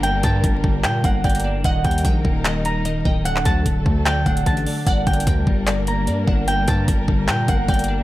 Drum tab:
HH |x-----------x-----------x-----------------------x-----------x-----------x--x--x--x--------------|x-----------x---x---x---x-----------------------x-----------x-----------x-----------------------|x-----------x-----------x-----------------------x-----------x-----x-----x-----x-----o-----------|x-----------x---x---x---x-----------------------x-----------x-----------x-----------------------|
CP |------------------------------------------------x-----------------------------------------------|------------------------------------------------x-----------------------------------------------|------x-----------------------------------------x-----------------------------------------------|------------------------------------------------x-----------------------------------------------|
BD |------------o-----------o-----------o-----------------------o-----------o-----------------------|o-----------o-----------o-----------o-----------------------------------------------o-----------|------------o-----------o-----------o-----------------------o-----------o-----------------------|o-----------o-----------o-----------o-----------------------------------------------o-----------|

HH |x-----------x-----------x-----------------------x-----------x-----------x--x--x--x--------------|
CP |------------------------------------------------x-----------------------------------------------|
BD |------------o-----------o-----------o-----------------------o-----------o-----------------------|